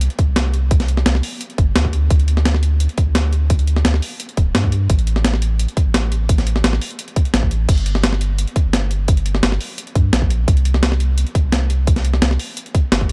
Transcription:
0.01 closed hi-hat
0.10 closed hi-hat
0.19 kick, closed hi-hat
0.28 C2
0.36 snare, closed hi-hat
0.54 closed hi-hat
0.71 kick, closed hi-hat
0.80 snare, closed hi-hat
0.88 closed hi-hat
0.97 snare
1.06 C2, snare, closed hi-hat
1.15 snare
1.23 open hi-hat
1.41 closed hi-hat
1.50 closed hi-hat
1.58 G1, kick, closed hi-hat
1.76 D2, snare, closed hi-hat
1.85 kick
1.93 closed hi-hat
2.10 D2, kick, closed hi-hat
2.20 closed hi-hat
2.28 closed hi-hat
2.37 snare
2.45 snare, closed hi-hat
2.54 snare
2.63 closed hi-hat
2.80 closed hi-hat
2.89 closed hi-hat
2.98 kick, closed hi-hat
3.07 D2
3.15 snare, closed hi-hat
3.33 closed hi-hat
3.50 kick, closed hi-hat
3.59 closed hi-hat
3.67 closed hi-hat
3.76 snare
3.85 D2, snare, closed hi-hat
3.94 snare
4.02 open hi-hat
4.20 closed hi-hat
4.29 closed hi-hat
4.37 D1, kick, closed hi-hat
4.55 G2, snare, closed hi-hat
4.64 kick
4.72 closed hi-hat
4.90 A1, kick, closed hi-hat
4.99 closed hi-hat
5.07 closed hi-hat
5.16 snare
5.25 snare, closed hi-hat
5.34 snare
5.42 closed hi-hat
5.59 closed hi-hat
5.68 closed hi-hat
5.77 kick, closed hi-hat
5.86 A1
5.94 snare, closed hi-hat
6.12 closed hi-hat
6.29 kick, closed hi-hat
6.38 snare, closed hi-hat
6.47 closed hi-hat
6.56 snare
6.64 A1, snare, closed hi-hat
6.73 snare
6.82 open hi-hat
6.91 closed hi-hat
6.99 closed hi-hat
7.08 closed hi-hat
7.16 kick, closed hi-hat
7.25 closed hi-hat
7.34 A1, snare, closed hi-hat
7.43 kick
7.51 closed hi-hat
7.69 G1, kick, closed hi-hat, crash
7.78 closed hi-hat
7.86 closed hi-hat
7.95 snare
8.04 snare, closed hi-hat
8.13 snare
8.21 closed hi-hat
8.38 closed hi-hat
8.47 closed hi-hat
8.56 kick, closed hi-hat
8.65 G1
8.73 snare, closed hi-hat
8.91 closed hi-hat
9.08 kick, closed hi-hat
9.17 closed hi-hat
9.26 closed hi-hat
9.35 snare
9.43 G1, snare, closed hi-hat
9.52 snare
9.61 open hi-hat
9.78 closed hi-hat
9.87 closed hi-hat
9.95 G2, kick, closed hi-hat
10.13 A#1, snare, closed hi-hat
10.22 kick
10.30 closed hi-hat
10.48 C2, kick, closed hi-hat
10.57 closed hi-hat
10.65 closed hi-hat
10.74 snare
10.83 snare, closed hi-hat
10.92 snare
11.00 closed hi-hat
11.18 closed hi-hat
11.27 closed hi-hat
11.35 kick, closed hi-hat
11.44 C2
11.52 snare, closed hi-hat
11.70 closed hi-hat
11.87 kick, closed hi-hat
11.96 snare, closed hi-hat
12.05 closed hi-hat
12.14 snare
12.22 C2, snare, closed hi-hat
12.31 snare
12.39 open hi-hat
12.57 closed hi-hat
12.66 closed hi-hat
12.75 kick, closed hi-hat
12.92 G1, snare, closed hi-hat
13.01 kick

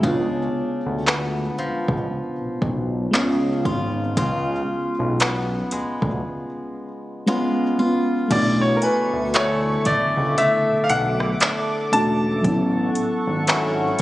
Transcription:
Already playing: F#3 C#4
0.01 C#2 C#3 G#3 B3 D4, kick
0.05 D4 F4
0.86 D2
1.07 B3, clap
1.59 C#2 F3
1.88 C#2, kick
2.41 B1
2.62 B1, kick
3.11 C#2 C#3 G#3 B3, clap
3.16 C#4 F4
3.65 G#1 F4, kick
4.17 C#2 C#3 F4, kick, closed hi-hat
4.99 B1
5.20 B3, clap, closed hi-hat
5.71 D2 G#3, closed hi-hat
6.02 D2, kick
7.26 G#3 B3 C#4 F4
7.78 G#3 B3 C#4 F4
8.28 B1 B2 D3 A3 B3 A4 D5 E5 C#6, kick, closed hi-hat, crash
8.33 D4 E4
8.61 C#5
8.77 A#4
8.82 B4 G#5, closed hi-hat
9.13 D2
9.34 A3 D4 E4 C#5, clap, closed hi-hat
9.85 C#2 A3 D5, kick, closed hi-hat
10.17 C#2
10.38 A3 E5 D6, closed hi-hat
10.69 B1
10.84 F5
10.89 B1 F#5, closed hi-hat
11.20 cross-stick
11.40 D4, clap, closed hi-hat
11.92 E1 A3 C#4 D4 F#4 A5, closed hi-hat
12.42 A1 F#3 B3 F#5 C#6, kick, closed hi-hat
12.46 C#4 E4
12.95 closed hi-hat
13.27 G#1
13.47 F#3 C#4 E4, clap, closed hi-hat
13.99 closed hi-hat

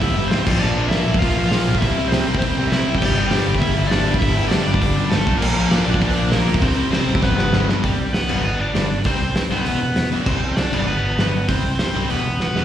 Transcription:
0.00 G1 G2 D3 G3 E4 E5, kick, open hi-hat
0.17 G1 G2 D3 G3
0.28 C4 C5, snare, open hi-hat
0.32 A1 G2 D3 G3
0.46 A#1 A#2 F3 A#3, kick, crash
0.59 A#1 A#2 F3 A#3 D4 D5
0.78 A#1 A#2 F3 A#3
0.88 A#2 F3 A#3 E4 E5, snare, open hi-hat
0.93 A#2
1.06 A#1 A#2 F3 A#3
1.14 kick
1.19 A#1 F3 A#3 F4 F5, kick, open hi-hat
1.23 A#2
1.37 A#1 A#2 F3 A#3
1.48 F4 F5, snare, open hi-hat
1.53 A#1 A#2 F3 A#3
1.68 A#1 A#2 F3 A#3
1.75 E5, kick
1.82 C2 C3 G3 C4 E4, kick, open hi-hat
1.97 C2 C3 G3 C4
2.08 C5
2.12 C3 G3 C4, snare, open hi-hat
2.28 C2 C3 G3 C4
2.35 kick
2.39 C2 C4 C5, kick, open hi-hat
2.43 C3 G3 C4
2.57 C2 C3 G3 C4
2.67 E4 E5
2.72 C2 C3 G3 C4, snare, open hi-hat
2.87 C2 C3 G3 C4
2.95 G5, kick
3.02 G1 G2 D3 G3 G4, kick, crash
3.16 G1 G2 D3 G3
3.27 G4 G5, snare, open hi-hat
3.32 G2 D3 G3
3.46 G1 G2 D3 G3
3.55 E5, kick
3.60 G1 G2 D3 G3 E4, kick, open hi-hat
3.75 G1 G2 D3 G3
3.87 G2 D5
3.91 G1 D3 G3 D4, snare, open hi-hat
4.06 G1 G2 D3 G3
4.14 kick
4.19 G1 G2 E4 E5, kick, open hi-hat
4.23 D3 G3
4.36 G1 G2 D3 G3
4.48 G2 D3 D4 D5, snare, open hi-hat
4.53 G3
4.63 G1 G3 D5
4.67 G2 D3 D4
4.74 kick
4.81 G1 G2 D3 G3, kick, open hi-hat
4.96 G1 G2 D3 G3
5.10 G1 G2 D3 G3 A3 A4, snare, open hi-hat
5.26 A#1 A#2 F3 A#3, kick
5.38 F3 A#3 A#4
5.42 A#1 A#2, crash
5.55 A#1 A#2 F3 A#3
5.70 A#2 F3 A#3 D4 D5, snare, open hi-hat
5.85 A#1 A#2 F3 A#3
5.92 D4 D5, kick
6.01 A#1 A#2 F3 A#3, kick, open hi-hat
6.16 A#1 A#2 F3 A#3
6.31 A#1 A#2 F3 A#3 A#4, snare, open hi-hat
6.45 D2 A#2 F3 A#3
6.54 kick
6.60 C2 C3 G3 C4 C5, kick, open hi-hat
6.75 C2 C3 G3 C4
6.91 C3 G3 C4 C5, snare, open hi-hat
7.07 A1 C3 G3 C4
7.15 kick
7.21 G1 G2 D3 G3 B3 B4, kick, snare
7.36 G1 G2 D3 G3, snare
7.51 G1 G2 D3 G3, snare
7.65 G1 G2 D3 G3
7.69 G3, snare
7.82 C2 C3 G3 C4 G4, kick, open hi-hat
7.99 C2
8.13 C2 B3 B4, snare, open hi-hat
8.28 G1 G2 D3 G3, crash
8.43 G1 B3 B4
8.59 G1 D4 D5
8.74 G1 G2 D3 G3, snare, open hi-hat
9.04 C2 C3 G3 C4 C5, kick, open hi-hat
9.21 C2
9.35 G2 C4 C5, snare, open hi-hat
9.50 C2 C3 G3 B3 C4 B4
9.66 E1 E2 B2 E3, open hi-hat
9.81 E1
9.96 E1, snare, open hi-hat
10.11 E1 E2 B2 E3
10.26 C2 C3 G3 C4 C5, kick, crash
10.43 C2
10.57 C2 D4 D5, snare, open hi-hat
10.72 G1 G2 D3 G3, crash
10.87 G1 B3 B4
11.03 G1
11.18 G1 G2 D3 G3, snare, open hi-hat
11.49 C2 C3 G3 C4 C5, kick, open hi-hat
11.64 C2
11.79 G2 C4 C5, snare, open hi-hat
11.94 C2 C3 G3 C4
12.09 E1 E2 B2 E3 B3 B4, open hi-hat
12.26 E1
12.40 E1 B3 B4, snare
12.54 E1 E2 B2 E3, snare

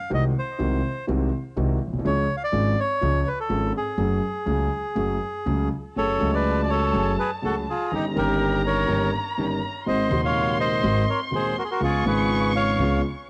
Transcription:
Already playing: F5
0.10 C2 C3 D#3 G#3 C4 F#4 D#5
0.38 C5
0.58 C2 C3 D#3 G#3 C4 F#4
1.07 C2 C3 D#3 G#3 C4 F#4
1.56 C2 C3 D#3 G#3 C4 F#4
1.87 A#1
1.93 B1
1.99 C2
2.05 C#2 C#3 F3 G#3 C#4 G#4 C#5
2.37 F5
2.44 D5
2.52 G#1 G#2 F3 G#3 C#4 G#4
2.80 C#5
3.01 C#2 C#3 F3 G#3 C#4 G#4
3.27 B4
3.40 A4
3.49 G#1 G#2 F3 G#3 C#4 G#4
3.77 G#4
3.98 F#1 F#2 F#3 A3 C#4 G#4
4.46 C#2 C#3 F#3 A3 C#4 G#4
4.95 F#1 F#2 F#3 A3 C#4 G#4
5.46 C#2 C#3 F#3 A3 C#4 G#4
5.96 F#1 F#2 F#3 A3 C#4 F#4 G#4 A4 C#5 A5
6.18 C#2 C#3 F#3 G#3 A3 C#4 F#4
6.34 B4 D5
6.63 D5
6.70 A4 C#5
6.93 F#1 F#2 F#3 A3 C#4 F#4 G#4
7.19 G#4 B4
7.42 C#2 C#3 F#3 A3 C#4 F#4 G#4 A4
7.70 F4 G#4
7.91 G1 G2 D#3 A#3 C#4 D#4 G4 A#5
8.14 G1 G2 D#3 A#3 C#4 D#4 G4
8.18 G4 A#4
8.67 A#4 C#5
8.88 G1 G2 D#3 A#3 C#4 D#4 G4
9.38 G1 G2 D#3 A#3 C#4 D#4 G4
9.86 G#1 G#2 D#3 G#3 C4 F#4 C5 D#5 C6
10.09 D#1 D#2 C3 D#3 G#3 D#4 F#4
10.25 C#5 F5
10.60 C5 D#5
10.83 G#1 G#2 D#3 G#3 C4 F#4
11.09 A#4 C#5
11.31 D#1 D#2 D#3 G#3 C4 F#4
11.35 G#4 C5
11.58 F#4 A#4
11.64 G#4
11.71 F#4 A#4
11.80 C#2 C#3 G#3 B3 C#4 F4 G#4 C#6
12.03 G#1 G#2 C#3 G#3 B3 C#4 F4
12.07 F4 G#4 B4
12.56 C#5 F5
12.79 C#2 C#3 G#3 B3 C#4 F4

